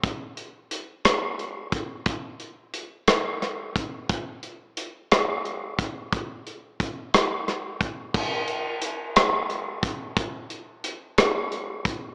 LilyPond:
\new DrumStaff \with { instrumentName = "Drums" } \drummode { \time 6/8 \tempo 4. = 59 <hh bd>8 hh8 hh8 <hh ss>8 hh8 <hh bd>8 | <hh bd>8 hh8 hh8 <hh ss>8 <hh ss>8 <hh bd>8 | <hh bd>8 hh8 hh8 <hh ss>8 hh8 <hh bd>8 | <hh bd>8 hh8 <hh bd>8 <hh ss>8 <hh ss>8 <hh bd>8 |
<cymc bd>8 hh8 hh8 <hh ss>8 hh8 <hh bd>8 | <hh bd>8 hh8 hh8 <hh ss>8 hh8 <hh bd>8 | }